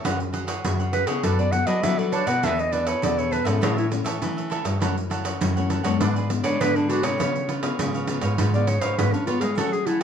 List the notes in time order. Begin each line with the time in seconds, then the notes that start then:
0.04 F#2 F#3 C#4 F#4 G#4 C#5 F#5, pandeiro
0.19 muted cavaquinho stroke, pandeiro
0.33 F#4 G#4 C#5 F#5, pandeiro
0.47 G#4 C#5 F#5, pandeiro
0.64 F#2 C#3 C#4 F#4 G#4, pandeiro
0.79 G#4 C#5 F#5, pandeiro
0.93 C#4 F#4 G#4 B4 C#5 F#5, pandeiro
1.07 C#3 B3 D4 G#4 A4 C#5 F#5, pandeiro
1.23 F#2 F#3 D4 A4 B4 D5, pandeiro
1.39 B3 D4 A4 B4 D5, pandeiro
1.52 B3 D4 A4 F#5, muted cavaquinho stroke, pandeiro
1.66 F#3 A4 B4 D5 D#5, pandeiro
1.83 F#3 B3 D4 A4 E5, pandeiro
1.99 A4 B4 D5, pandeiro
2.12 D4 A4 B4 C#5 D5, pandeiro
2.26 B2 A4 B4 D5 F#5, pandeiro
2.43 E2 E3 B3 D4 A4 B4 E5, pandeiro
2.59 D#5, muted cavaquinho stroke, pandeiro
2.72 D4 A4 B4 D5 E5, pandeiro
2.86 A4 B4 C#5 E5, pandeiro
3.02 E2 B2 B3 D4 A4 D5, pandeiro
3.18 A4 B4 C#5 E5, pandeiro
3.31 D4 A4 B4 E5, pandeiro
3.45 G#2 E3 A3 C#4 A4 B4 E5, pandeiro
3.61 A2 E4 G#4 A4 C#5 E5, pandeiro
3.77 E4 A4 C#5 E5, pandeiro
3.91 E3 A3 C#4, muted cavaquinho stroke, pandeiro
4.04 E3 A4 C#5 E5, pandeiro
4.22 E3 A3 C#4, pandeiro
4.37 A4 C#5 E5, pandeiro
4.50 E4 A4 C#5 E5, pandeiro
4.64 G2 A4 C#5 E5, pandeiro
4.81 F#2 E3 A3 C#4 E4 A4 C#5 F#5, pandeiro
4.97 muted cavaquinho stroke, pandeiro
5.10 E4 A4 C#5 F#5, pandeiro
5.24 A4 C#5 F#5, pandeiro
5.41 F#2 C#3 E3 A3 C#4, pandeiro
5.56 E3 A3 C#4 A4 C#5 F#5, pandeiro
5.69 E4 A4 C#5 F#5, pandeiro
5.84 F#2 G#3 B3 D4 A4 C#5 F#5, pandeiro
6.00 G#2 D4 G#4 B4 D5, pandeiro
6.16 G#4 B4 D5, pandeiro
6.30 G#3 B3 D4, muted cavaquinho stroke, pandeiro
6.44 D3 G#4 B4 C#5 D5, pandeiro
6.60 G#2 D3 G#3 B3 D4 B4, pandeiro
6.76 D4 G#4 B4 D5, pandeiro
6.89 D4 F#4 G#4 B4 D5, pandeiro
7.03 C3 G#4 B4 C#5 D5, pandeiro
7.19 C#3 B3 F4 G#4 B4 C#5 F5, pandeiro
7.35 muted cavaquinho stroke, pandeiro
7.49 F4 B4 C#5 F5, pandeiro
7.63 B3 F4 G#4 B4 C#5 F5, pandeiro
7.79 G#2 C#3, pandeiro
7.94 B4 C#5 F5, pandeiro
8.07 B3 F4 G#4 B4 C#5 F5, pandeiro
8.21 G#2 B4 C#5 F5, pandeiro
8.38 G#2 C#3 F4 B4 C#5 F5, pandeiro
8.54 B3 F4 G#4 B4 C#5 D5 F5, pandeiro
8.67 C#5, muted cavaquinho stroke, pandeiro
8.81 G#2 B4 C5 C#5 F5, pandeiro
8.98 G#2 B3 F4 G#4 B4, pandeiro
9.13 C#4 D4 B4 C#5 F5, pandeiro
9.26 B3 F4 G#4 B4 C#5 F5, pandeiro
9.40 G#3 G#4 B4 C#5 F5, pandeiro
9.57 F#3 A3 C#4 G#4 A4 C#5 F#5 G#5, pandeiro
9.73 G#4, muted cavaquinho stroke, pandeiro
9.87 E4 A4 C#5 F#5 G#5, pandeiro